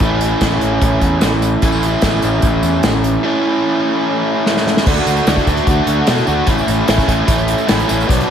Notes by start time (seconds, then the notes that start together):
0.00 A1 A2 E3 A3 C#4 E4, kick
0.21 closed hi-hat
0.41 A1, kick, snare, closed hi-hat
0.61 A1, closed hi-hat
0.82 A1, kick, closed hi-hat
1.01 E2, kick, closed hi-hat
1.21 A1, snare, closed hi-hat
1.42 closed hi-hat
1.62 A1 A2 E3 A3 C#4 E4, kick, closed hi-hat, tambourine
1.72 tambourine
1.83 closed hi-hat, tambourine
1.93 tambourine
2.02 A1, kick, snare, closed hi-hat, tambourine
2.22 A1, closed hi-hat, tambourine
2.33 tambourine
2.42 A1, kick, closed hi-hat
2.63 E2, closed hi-hat, tambourine
2.83 A1, snare, closed hi-hat, tambourine
2.94 tambourine
3.04 closed hi-hat
3.23 A2 E3 A3 C#4 E4
4.46 snare
4.57 snare
4.67 snare
4.77 snare
4.86 D2 D3 A3 D4 F#4, kick, crash
4.97 closed hi-hat
5.07 D2, closed hi-hat
5.17 closed hi-hat
5.27 D2 D3 A3 D4 F#4, snare, closed hi-hat
5.37 kick, snare, closed hi-hat
5.47 D2 D3 A3 D4 F#4, kick, closed hi-hat
5.57 closed hi-hat
5.67 D2 D3 A3 D4 F#4, kick, closed hi-hat
5.87 D2, closed hi-hat
6.07 B2 D3 A3 D4 F#4, snare, closed hi-hat
6.17 closed hi-hat
6.27 D2 D3 A3 D4 F#4, closed hi-hat
6.47 A1 A2 E3 A3 C#4 E4, kick, closed hi-hat
6.58 closed hi-hat
6.68 A1, closed hi-hat
6.87 A1 A2 E3 A3 C#4 E4, snare, closed hi-hat
6.98 kick, snare, closed hi-hat
7.07 A1 A2 E3 A3 C#4 E4, kick, closed hi-hat
7.26 A1 A2 E3 A3 C#4 E4, kick, closed hi-hat
7.38 closed hi-hat
7.48 closed hi-hat
7.58 closed hi-hat
7.67 A1 A2 E3 A3 C#4 E4, snare, closed hi-hat
7.79 closed hi-hat
7.88 A1 A2 E3 A3 C#4 E4, closed hi-hat
8.00 closed hi-hat
8.08 B1 B2 F#3 B3 D4, kick, closed hi-hat
8.20 closed hi-hat